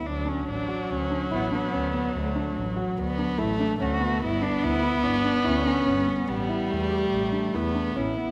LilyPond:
<<
  \new Staff \with { instrumentName = "Felt piano" } { \time 5/4 \key d \major \tempo 4 = 144 r8 d'4 fis'4 d'8 e'8 d'8 cis'8 b8 | r8 d'4 fis'4 d'8 e'8 d'8 cis'8 b8 | r8 d'4 e'4 d'8 e'8 d'8 cis'8 b8 | r8 e'4 g'4 d'8 e'8 d'8 cis'8 b8 | }
  \new Staff \with { instrumentName = "Cello" } { \time 5/4 \key d \major d'8 cis'8 d'4 cis'4 b8 b4. | a4 fis2. fis'4 | e'8 d'8 e'4 d'4 cis'8 cis'4. | b4 a2. e'4 | }
  \new Staff \with { instrumentName = "Viola" } { \time 5/4 \key d \major fis1~ fis4~ | fis2 b4 a4 a4 | b1~ b4 | g2. b4. r8 | }
  \new Staff \with { instrumentName = "Double bass" } { \clef bass \time 5/4 \key d \major d,4 a,,4 d,4 a,,4 d,4 | d,4 a,,4 d,4 a,,4 d,4 | g,,4 d,4 g,,4 d,4 g,,4 | a,,4 e,4 a,,4 e,4 a,,4 | }
>>